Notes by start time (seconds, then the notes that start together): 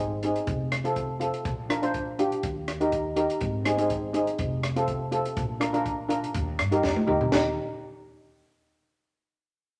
Already playing: G#1
0.23 C4 D#4 G#4, closed hi-hat
0.36 closed hi-hat
0.47 F1, kick, closed hi-hat
0.72 cross-stick, closed hi-hat
0.84 C4 F4 A4, closed hi-hat
0.96 kick, closed hi-hat
1.20 C4 F4 A4, closed hi-hat
1.34 closed hi-hat
1.45 A#1, kick, closed hi-hat
1.69 D4 F4 A#4, cross-stick, closed hi-hat
1.82 D4 F4 C5, closed hi-hat
1.94 kick, closed hi-hat
2.19 D4 F4 G4, closed hi-hat
2.32 closed hi-hat
2.43 D#2, kick, closed hi-hat
2.68 cross-stick, closed hi-hat
2.80 D#4 G4 A#4, closed hi-hat
2.92 kick, closed hi-hat
3.16 D#4 G4 A#4, closed hi-hat
3.30 closed hi-hat
3.41 G#1, kick, closed hi-hat
3.65 C4 D#4 G#4, cross-stick, closed hi-hat
3.77 C4 D#4 G#4, closed hi-hat
3.90 kick, closed hi-hat
4.13 C4 D#4 G#4, closed hi-hat
4.27 closed hi-hat
4.39 F1, kick, closed hi-hat
4.63 cross-stick, closed hi-hat
4.76 C4 F4 A4, closed hi-hat
4.88 kick, closed hi-hat
5.11 C4 F4 A4, closed hi-hat
5.25 closed hi-hat
5.37 A#1, kick, closed hi-hat
5.60 D4 F4 A#4, cross-stick, closed hi-hat
5.73 D4 F4 A#4, closed hi-hat
5.86 kick, closed hi-hat
6.09 D4 F4 A#4, closed hi-hat
6.24 closed hi-hat
6.34 D#2, kick, closed hi-hat
6.59 G2, cross-stick, closed hi-hat
6.71 D#4 G4 A#4, closed hi-hat
6.83 F2, kick, snare
6.96 high tom
7.07 D#2 D#4 G4 A#4, mid tom
7.21 floor tom
7.32 D#2 D#4 G4 A#4, snare, crash